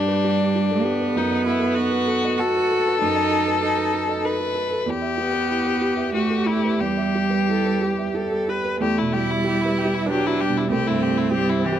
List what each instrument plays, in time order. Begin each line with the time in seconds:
Already playing: upright piano G2 D4 G4 B4, cello G3, violin D4, viola G4
0.08 upright piano B4
0.24 upright piano G4
0.39 upright piano D5
0.55 upright piano G4
0.71 upright piano A4
0.83 cello B3, upright piano G4
1.00 upright piano B4
1.14 upright piano F#2, violin D#4, viola A4
1.31 upright piano D#5
1.46 violin E4, upright piano A4
1.60 upright piano B4
1.75 upright piano D#4, violin F#4
1.91 upright piano B4
2.06 upright piano A4
2.24 upright piano D#5
2.38 cello F#4, violin A4, upright piano A4
2.56 upright piano B4
2.71 upright piano A4
2.87 upright piano B4
3.00 upright piano F#2, cello D#4
3.16 upright piano D#5
3.31 upright piano A4
3.47 upright piano B4
3.62 upright piano D#4, cello D#4
3.77 upright piano B4
4.09 upright piano D#5
4.25 upright piano A4, violin B4
4.40 upright piano B4
4.55 upright piano A4
4.71 upright piano B4
4.86 upright piano E2, viola G4, violin G4
5.02 upright piano E5
5.18 cello B3, upright piano G4
5.33 upright piano B4
5.50 upright piano E4
5.65 upright piano B4
5.81 upright piano G4
5.97 upright piano E5
6.14 cello A3, violin F#4, upright piano G4
6.30 upright piano A4
6.46 violin E4, upright piano G4
6.64 upright piano B4
6.80 upright piano E2, cello G3, violin G4
6.97 upright piano E5
7.15 upright piano G4
7.30 upright piano B4
7.48 upright piano E4, viola A4
7.66 upright piano B4
7.82 upright piano G4, viola G4
7.98 upright piano E5
8.15 upright piano G4, viola A4
8.31 upright piano A4
8.48 upright piano G4, viola B4
8.65 upright piano B4
8.80 upright piano E2, viola A3, violin G4
8.99 upright piano B2, violin E4
9.13 viola G3, cello E4, violin G4
9.24 upright piano E4
9.30 violin E4
9.44 upright piano G4, violin G4
9.61 violin E4, upright piano B4
9.78 violin G4
9.85 upright piano G4
9.94 violin E4
10.06 viola F#3, cello D4, violin G4, upright piano B4
10.26 violin E4, upright piano G4
10.40 viola G3, violin G4
10.49 upright piano B2
10.57 violin E4
10.68 upright piano C2, viola A3, cello C4, violin G4
10.87 upright piano G2, violin E4
11.02 violin G4
11.10 upright piano E4
11.17 violin E4
11.31 viola G3, upright piano G4, violin G4
11.49 violin E4, upright piano C5
11.64 viola E3, violin G4
11.73 upright piano G4